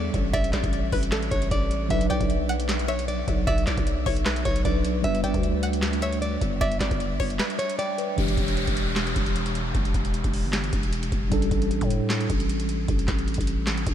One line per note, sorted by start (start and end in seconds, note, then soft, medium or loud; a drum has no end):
0.00 1.86 G3 medium
0.00 1.86 D4 medium
0.00 1.87 A4 medium
0.00 0.31 D5 medium
0.00 0.30 E5 medium
0.14 0.33 A1 loud
0.14 kick medium
0.14 closed hi-hat medium
0.33 0.52 A1 loud
0.33 0.89 D5 loud
0.33 0.50 E5 loud
0.33 kick loud
0.33 closed hi-hat medium
0.44 closed hi-hat medium
0.53 0.63 A1 loud
0.53 1.09 D5 medium
0.53 snare medium
0.53 clap medium
0.53 closed hi-hat medium
0.64 0.91 A1 loud
0.64 kick loud
0.64 closed hi-hat medium
0.73 closed hi-hat medium
0.92 1.30 A1 loud
0.92 1.11 B4 medium
0.92 kick medium
0.92 open hi-hat medium
1.03 closed hi-hat medium
1.12 1.49 A4 medium
1.12 snare loud
1.12 clap medium
1.12 closed hi-hat medium
1.22 closed hi-hat medium
1.31 1.50 A1 loud
1.31 1.48 C#5 medium
1.31 kick loud
1.31 closed hi-hat medium
1.42 closed hi-hat medium
1.51 1.89 A1 loud
1.51 1.88 D5 medium
1.51 kick loud
1.51 closed hi-hat medium
1.71 closed hi-hat medium
1.89 2.09 B1 loud
1.89 4.60 F#3 medium
1.89 4.61 D4 medium
1.89 4.62 B4 medium
1.89 2.07 E5 loud
1.89 kick loud
1.89 closed hi-hat medium
2.01 closed hi-hat medium
2.10 2.20 B1 loud
2.10 2.65 D5 medium
2.10 2.47 G5 medium
2.10 closed hi-hat medium
2.20 3.24 B1 loud
2.20 kick loud
2.20 closed hi-hat medium
2.30 closed hi-hat medium
2.49 2.86 F#5 medium
2.49 closed hi-hat medium
2.60 closed hi-hat medium
2.68 snare loud
2.68 clap loud
2.68 closed hi-hat medium
2.79 closed hi-hat medium
2.88 3.05 C#5 medium
2.88 3.44 E5 medium
2.88 closed hi-hat medium
2.99 closed hi-hat medium
3.08 3.45 D5 medium
3.08 closed hi-hat medium
3.28 3.47 B1 loud
3.28 kick medium
3.28 closed hi-hat medium
3.47 3.66 B1 loud
3.47 4.03 D5 medium
3.47 3.64 E5 loud
3.47 kick loud
3.47 closed hi-hat medium
3.58 closed hi-hat medium
3.67 3.77 B1 loud
3.67 4.23 D5 medium
3.67 snare medium
3.67 clap medium
3.67 closed hi-hat medium
3.77 4.05 B1 loud
3.77 kick loud
3.77 closed hi-hat medium
3.87 closed hi-hat medium
4.06 4.44 B1 loud
4.06 4.25 C#5 medium
4.06 kick medium
4.06 open hi-hat medium
4.16 closed hi-hat medium
4.25 4.63 B4 medium
4.25 snare loud
4.25 clap medium
4.25 closed hi-hat medium
4.36 closed hi-hat medium
4.45 4.64 B1 loud
4.45 4.62 C#5 medium
4.45 kick loud
4.45 closed hi-hat medium
4.56 closed hi-hat medium
4.64 5.03 B1 loud
4.64 5.04 F#3 medium
4.64 5.03 D4 medium
4.64 5.05 B4 medium
4.64 5.02 D5 medium
4.64 kick loud
4.64 closed hi-hat medium
4.84 closed hi-hat medium
5.02 5.23 G1 loud
5.02 8.13 G3 medium
5.02 8.14 D4 medium
5.02 7.97 B4 medium
5.02 5.21 E5 loud
5.02 kick loud
5.02 closed hi-hat medium
5.15 closed hi-hat medium
5.24 5.34 G1 loud
5.24 5.79 D5 medium
5.24 5.61 G5 medium
5.24 closed hi-hat medium
5.34 6.37 D2 loud
5.34 kick loud
5.34 closed hi-hat medium
5.43 closed hi-hat medium
5.63 6.00 F#5 medium
5.63 closed hi-hat medium
5.73 closed hi-hat medium
5.82 snare loud
5.82 clap medium
5.82 closed hi-hat medium
5.93 closed hi-hat medium
6.02 6.19 C#5 medium
6.02 6.58 E5 medium
6.02 closed hi-hat medium
6.13 closed hi-hat medium
6.22 6.59 D5 medium
6.22 closed hi-hat medium
6.41 6.60 G1 loud
6.41 kick medium
6.41 closed hi-hat medium
6.61 6.80 G1 loud
6.61 7.16 D5 loud
6.61 6.78 E5 loud
6.61 kick loud
6.61 closed hi-hat medium
6.71 closed hi-hat medium
6.80 6.90 G1 loud
6.80 7.36 D5 medium
6.80 snare medium
6.80 clap medium
6.80 closed hi-hat medium
6.91 7.19 G1 loud
6.91 kick loud
6.91 closed hi-hat medium
7.00 closed hi-hat medium
7.20 7.39 G1 loud
7.20 7.38 C#5 medium
7.20 kick medium
7.20 open hi-hat medium
7.30 closed hi-hat medium
7.39 7.76 B4 medium
7.39 snare loud
7.39 clap medium
7.39 closed hi-hat medium
7.50 closed hi-hat medium
7.59 7.76 C#5 medium
7.59 closed hi-hat medium
7.69 closed hi-hat medium
7.79 8.16 D5 medium
7.79 7.97 G5 medium
7.79 closed hi-hat medium
7.98 8.16 B4 medium
7.98 closed hi-hat medium
8.16 8.37 E1 loud
8.16 11.27 E3 medium
8.16 11.28 D4 medium
8.16 11.28 G4 medium
8.16 kick loud
8.16 closed hi-hat medium
8.16 downlifter medium
8.28 closed hi-hat medium
8.37 8.66 E1 loud
8.37 kick medium
8.37 closed hi-hat medium
8.48 closed hi-hat soft
8.57 closed hi-hat medium
8.67 9.14 E1 loud
8.67 kick medium
8.67 closed hi-hat medium
8.77 closed hi-hat medium
8.96 snare loud
8.96 clap medium
8.96 closed hi-hat medium
9.07 closed hi-hat medium
9.16 9.72 E1 loud
9.16 kick loud
9.16 closed hi-hat medium
9.26 closed hi-hat medium
9.36 closed hi-hat medium
9.46 closed hi-hat medium
9.55 closed hi-hat medium
9.75 9.94 E1 loud
9.75 kick loud
9.75 closed hi-hat medium
9.85 closed hi-hat medium
9.94 10.23 E1 loud
9.94 kick medium
9.94 closed hi-hat medium
10.05 closed hi-hat soft
10.14 closed hi-hat medium
10.24 10.45 E1 loud
10.24 kick medium
10.24 closed hi-hat medium
10.33 open hi-hat medium
10.44 10.71 G1 loud
10.53 snare loud
10.53 clap medium
10.53 closed hi-hat medium
10.64 closed hi-hat medium
10.73 11.10 E1 loud
10.73 kick loud
10.73 closed hi-hat medium
10.83 closed hi-hat medium
10.93 closed hi-hat medium
11.03 closed hi-hat medium
11.12 11.31 E1 loud
11.12 kick medium
11.12 closed hi-hat medium
11.30 11.50 A1 loud
11.30 13.94 G3 medium
11.30 13.94 D4 medium
11.30 13.94 A4 medium
11.30 kick loud
11.30 closed hi-hat medium
11.42 closed hi-hat medium
11.51 11.80 A1 loud
11.51 kick medium
11.51 closed hi-hat medium
11.62 closed hi-hat medium
11.71 closed hi-hat medium
11.81 12.28 A2 loud
11.81 kick medium
11.81 closed hi-hat medium
11.90 closed hi-hat medium
12.10 snare loud
12.10 clap medium
12.10 closed hi-hat medium
12.21 closed hi-hat medium
12.30 12.86 A1 loud
12.30 kick loud
12.30 closed hi-hat medium
12.40 closed hi-hat medium
12.49 closed hi-hat medium
12.60 closed hi-hat medium
12.69 closed hi-hat medium
12.88 13.07 A1 loud
12.88 kick loud
12.88 closed hi-hat medium
12.99 closed hi-hat medium
13.08 13.37 A1 loud
13.08 kick medium
13.08 snare medium
13.08 clap medium
13.08 closed hi-hat medium
13.19 closed hi-hat medium
13.28 closed hi-hat soft
13.34 13.85 A1 loud
13.34 kick medium
13.34 closed hi-hat medium
13.41 closed hi-hat medium
13.47 closed hi-hat medium
13.66 snare loud
13.66 clap medium
13.66 closed hi-hat medium
13.77 closed hi-hat medium
13.87 13.94 A1 loud
13.87 kick loud
13.87 closed hi-hat medium